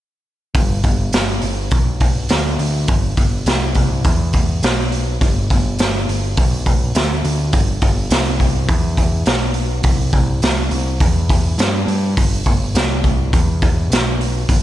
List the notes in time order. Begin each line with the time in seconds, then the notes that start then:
0.55 G1, kick, open hi-hat
0.83 G1, kick, open hi-hat
1.13 G1, snare, open hi-hat
1.42 G1, open hi-hat
1.71 B1, kick, open hi-hat
2.00 kick, open hi-hat
2.29 D2, snare, open hi-hat
2.59 D2, open hi-hat
2.88 G1, kick, open hi-hat
3.17 G1, kick, open hi-hat
3.46 C2, snare, open hi-hat
3.75 C2, kick, open hi-hat
4.04 E2, kick, open hi-hat
4.33 kick, open hi-hat
4.62 B1, snare, open hi-hat
4.92 open hi-hat
5.21 G1, kick, open hi-hat
5.50 G1, kick, open hi-hat
5.79 G1, snare, open hi-hat
6.08 G1, open hi-hat
6.37 B1, kick, open hi-hat
6.66 kick, open hi-hat
6.95 D2, snare, open hi-hat
7.24 D2, open hi-hat
7.53 G1, kick, open hi-hat
7.82 G1, kick, open hi-hat
8.10 C2, snare, open hi-hat
8.40 C2, kick, open hi-hat
8.68 E2, kick, open hi-hat
8.97 kick, open hi-hat
9.26 B1, snare, open hi-hat
9.54 open hi-hat
9.83 C2, kick, open hi-hat
10.13 C2, kick, open hi-hat
10.42 C2, snare, open hi-hat
10.71 C2, open hi-hat
11.00 E2, kick, open hi-hat
11.30 kick, open hi-hat
11.58 G2, snare, open hi-hat
11.87 G2, open hi-hat
12.17 G1, kick, open hi-hat
12.46 G1, kick, open hi-hat
12.75 C2, snare, open hi-hat
13.04 C2, kick, open hi-hat
13.33 E2, kick, open hi-hat
13.62 kick, open hi-hat
13.90 B1, snare, open hi-hat
14.21 open hi-hat
14.49 G1, kick, open hi-hat